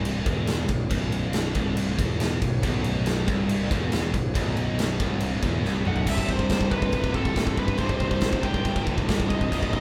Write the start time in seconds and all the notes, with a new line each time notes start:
Already playing: C1 C2
0.05 crash
0.24 E1 E2, kick, crash
0.47 snare, crash
0.68 B0 B1, kick, crash
0.90 B0 B1, kick, crash
1.12 crash
1.33 snare, crash
1.55 C1 C2, kick, crash
1.77 crash
1.98 E1 E2, kick, crash
2.20 snare, crash
2.42 B0 B1, kick, crash
2.63 B0 B1, kick, crash
2.84 crash
3.06 snare, crash
3.26 C1 C2, kick, crash
3.49 crash
3.69 E1 E2, kick, crash
3.92 snare, crash
4.13 B0 B1, kick, crash
4.34 B0 B1, kick, crash
4.57 crash
4.79 snare, crash
5.00 C1 C2, kick, crash
5.20 crash
5.42 E1 E2, kick, crash
5.64 C1 C2, snare
5.85 B0 B1 F#5, mid tom
5.96 floor tom
6.06 C1 C2 G2 C3 E5, kick, crash, china
6.18 kick
6.29 C5, kick
6.39 kick
6.49 C1, kick, snare, china
6.61 kick
6.70 C1 C2 G2 C3 B4, kick
6.82 kick
6.92 C1, kick, china
7.04 kick
7.13 C1 G2 C3 A4, kick
7.18 C2
7.25 kick
7.36 C1 C2 G2 C3, kick, snare, china
7.47 kick
7.57 G1 B4, kick
7.68 kick
7.77 C1 C2 G2 C3 C5, kick, china
7.89 kick
8.00 C1, kick
8.11 kick
8.21 C1, kick, snare, china
8.33 kick
8.42 C2 G2 C3 G5, kick
8.54 kick
8.65 G1, kick, china
8.76 kick
8.86 C1 G2 C3, kick
8.90 C2
8.98 kick
9.06 C1 C2 G2, kick, china
9.10 C3, snare
9.20 kick
9.29 C1 D#5, kick
9.41 kick
9.50 B0 B1 F#2 B2, kick, crash, china
9.63 kick
9.73 D#5, kick